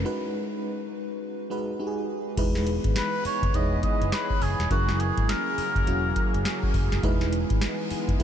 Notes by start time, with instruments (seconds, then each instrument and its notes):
0.05 fm electric piano G#3 D#4 F#4 B4
1.50 fm electric piano G#3 D#4 F#4 B4
1.79 fm electric piano G#3 D#4 F#4 G4
1.87 fm electric piano G#4
2.37 fingered electric bass E1, analog synth pad E3 G#3 B3 G#4, fm electric piano G#3 D#4 E4 B4, kick, closed hi-hat, crash
2.55 snare
2.67 closed hi-hat
2.84 fingered electric bass G#1, kick, closed hi-hat
2.96 cor anglais B4, snare, closed hi-hat
3.25 cor anglais C#5, muted fingered electric bass stroke, open hi-hat
3.43 fingered electric bass F#1, kick, closed hi-hat
3.54 fingered electric bass E1, fm electric piano G#3 D#4 E4 C#5, cor anglais D#5, kick, closed hi-hat
3.83 cor anglais D#5, kick, closed hi-hat
4.01 fingered electric bass F#1, closed hi-hat
4.12 cor anglais B4, snare, closed hi-hat
4.30 kick
4.42 fingered electric bass F#1, cor anglais G#4, open hi-hat
4.59 fingered electric bass E1, snare, closed hi-hat
4.71 fingered electric bass F#1, analog synth pad C#3 F#3 A#3, fm electric piano F#3 C#4 E4 A#4, cor anglais F#4, kick, closed hi-hat
4.89 snare
5.00 cor anglais G#4, closed hi-hat
5.18 fingered electric bass G#1, kick, closed hi-hat
5.29 cor anglais A#4, snare, closed hi-hat
5.58 muted fingered electric bass stroke, open hi-hat
5.76 fingered electric bass F#1, kick, closed hi-hat
5.87 fingered electric bass E1, fm electric piano F#3 C#4 E4 F#4, closed hi-hat
6.16 kick, closed hi-hat
6.34 fingered electric bass F#1, closed hi-hat
6.45 snare, closed hi-hat
6.63 kick
6.74 fingered electric bass F#1, kick, open hi-hat
6.92 fingered electric bass F#1, snare, closed hi-hat
7.03 fingered electric bass E1, analog synth pad E3 G#3 B3, fm electric piano G#3 D#4 E4 B4, kick, closed hi-hat
7.21 snare
7.33 closed hi-hat
7.50 fingered electric bass G#1, kick, closed hi-hat
7.61 snare, closed hi-hat
7.91 muted fingered electric bass stroke, open hi-hat
8.08 fingered electric bass F#1, kick, closed hi-hat
8.20 fm electric piano G#3 D#4, closed hi-hat